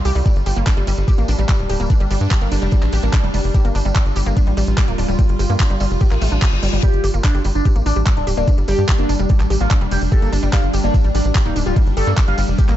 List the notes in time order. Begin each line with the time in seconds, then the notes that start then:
Already playing: G3 F4
0.05 C2 G4, open hi-hat, tambourine
0.15 C2 G3, open hi-hat, tambourine
0.26 G3 D4, kick, closed hi-hat, tambourine
0.36 G1, closed hi-hat, tambourine
0.46 G1 G4, open hi-hat, tambourine
0.56 G1 A#3, tambourine
0.67 D4, kick, clap, closed hi-hat, tambourine
0.77 G1 G3, closed hi-hat, tambourine
0.87 G1 G3, open hi-hat, tambourine
0.97 G1, closed hi-hat, tambourine
1.08 G4, kick, closed hi-hat, tambourine
1.18 A1 A#3, closed hi-hat, tambourine
1.28 A1 D4, open hi-hat, tambourine
1.39 A1 G3, closed hi-hat, tambourine
1.49 G3, kick, clap, closed hi-hat, tambourine
1.59 D1, closed hi-hat, tambourine
1.69 D1 G4, open hi-hat, tambourine
1.80 D1 A#3, tambourine
1.90 D4, kick, closed hi-hat, tambourine
2.00 G1 G3, closed hi-hat, tambourine
2.11 G1 G3, open hi-hat, tambourine
2.21 G2, closed hi-hat, tambourine
2.31 G4, kick, clap, closed hi-hat, tambourine
2.41 G1 A#3, closed hi-hat, tambourine
2.52 G1 D4, open hi-hat, tambourine
2.62 F1 G3, closed hi-hat, tambourine
2.71 G3, kick, closed hi-hat, tambourine
2.82 A1, clap, closed hi-hat, tambourine
2.92 A1 G4, open hi-hat, tambourine
3.03 A1 A#3, closed hi-hat, tambourine
3.13 D4, kick, clap, closed hi-hat, tambourine
3.24 F1 G3, closed hi-hat, tambourine
3.34 F1 G3, open hi-hat, tambourine
3.44 F1, open hi-hat, tambourine
3.54 F4 G4, kick, closed hi-hat, tambourine
3.65 G1 A#3, closed hi-hat, tambourine
3.75 G1 D4, open hi-hat, tambourine
3.85 G1 G3, closed hi-hat, tambourine
3.96 G3, kick, clap, closed hi-hat, tambourine
4.06 G1, closed hi-hat, tambourine
4.16 G1 G4, open hi-hat, tambourine
4.26 G1 A#3, closed hi-hat, tambourine
4.37 D4, kick, closed hi-hat, tambourine
4.47 A1 G3, closed hi-hat, tambourine
4.57 A1 G3, open hi-hat, tambourine
4.67 A1, closed hi-hat, tambourine
4.77 G4, kick, clap, closed hi-hat, tambourine
4.88 D1 A#3, closed hi-hat, tambourine
4.98 D1 D4, open hi-hat, tambourine
5.09 D1 G3, closed hi-hat, tambourine
5.19 G3, kick, closed hi-hat, tambourine
5.29 G1, closed hi-hat, tambourine
5.39 G1 G4, open hi-hat, tambourine
5.50 G2 A#3, closed hi-hat, tambourine
5.60 D4, kick, clap, closed hi-hat, tambourine
5.70 G1 G3, closed hi-hat, tambourine
5.80 G1 G3, open hi-hat, tambourine
5.90 F1, tambourine
6.01 G4, kick, closed hi-hat, tambourine, reverse cymbal
6.11 A1 A#3, clap, closed hi-hat, tambourine
6.21 A1 A3, open hi-hat, tambourine
6.31 A1 D4, closed hi-hat, tambourine
6.42 G4, kick, clap, closed hi-hat, tambourine
6.52 G1, closed hi-hat, tambourine
6.63 G1 G3, open hi-hat, tambourine
6.73 G1 G3, open hi-hat, tambourine
6.83 G3 D4 G4, kick, closed hi-hat, tambourine
6.93 G1, closed hi-hat, tambourine
7.04 G1 G4, open hi-hat, tambourine
7.14 G1 A#3, closed hi-hat, tambourine
7.24 D4, kick, clap, closed hi-hat, tambourine
7.35 G1 G3, closed hi-hat, tambourine
7.44 G1 G3, open hi-hat, tambourine
7.55 G1 D4, closed hi-hat, tambourine
7.65 G4, kick, closed hi-hat, tambourine
7.76 A1 A#3, closed hi-hat, tambourine
7.86 A1 D4, open hi-hat, tambourine
7.96 A1 G3, closed hi-hat, tambourine
8.06 G3, kick, clap, closed hi-hat, tambourine
8.17 D1 D4, closed hi-hat, tambourine
8.27 D1 G4, open hi-hat, tambourine
8.37 D1 A#3 D4, closed hi-hat, tambourine
8.48 D4, kick, closed hi-hat, tambourine
8.58 G1 G3, closed hi-hat, tambourine
8.68 G1 G3 G4, open hi-hat, tambourine
8.78 G2, tambourine
8.88 G4, kick, clap, closed hi-hat, tambourine
8.98 G1 A#3 D4, closed hi-hat, tambourine
9.09 G1 D4, open hi-hat, tambourine
9.19 F1 G3, closed hi-hat, tambourine
9.29 G3, kick, closed hi-hat, tambourine
9.40 A1, clap, closed hi-hat, tambourine
9.50 A1 G4, open hi-hat, tambourine
9.60 A1 A#3 F4, tambourine
9.70 D4, kick, clap, closed hi-hat, tambourine
9.81 F1 G3, closed hi-hat, tambourine
9.91 F1 G3 G4, open hi-hat, tambourine
10.01 F1, open hi-hat, tambourine
10.12 G4 A4, kick, closed hi-hat, tambourine
10.22 G1 A#3, closed hi-hat, tambourine
10.32 G1 D4, open hi-hat, tambourine
10.43 G1 G3, closed hi-hat, tambourine
10.53 G3 F4, kick, clap, closed hi-hat, tambourine
10.63 G1, closed hi-hat, tambourine
10.73 G1 G4, open hi-hat, tambourine
10.84 G1 A#3 D4, closed hi-hat, tambourine
10.94 D4, kick, closed hi-hat, tambourine
11.04 A1 G3, closed hi-hat, tambourine
11.15 A1 G3 D4, open hi-hat, tambourine
11.25 A1, closed hi-hat, tambourine
11.35 G4, kick, clap, closed hi-hat, tambourine
11.45 D1 A#3 D#4, closed hi-hat, tambourine
11.56 D1 D4, open hi-hat, tambourine
11.66 D1 G3 F4, closed hi-hat, tambourine
11.76 G3, kick, closed hi-hat, tambourine
11.87 G1, closed hi-hat, tambourine
11.97 G1 G4 A4, open hi-hat, tambourine
12.07 G2 A#3, closed hi-hat, tambourine
12.17 D4, kick, clap, closed hi-hat, tambourine
12.27 G1 G3 F4, closed hi-hat, tambourine
12.38 G1 G3, open hi-hat, tambourine
12.48 F1, closed hi-hat, tambourine
12.58 G4, kick, closed hi-hat, tambourine
12.69 A1 A#3, clap, closed hi-hat, tambourine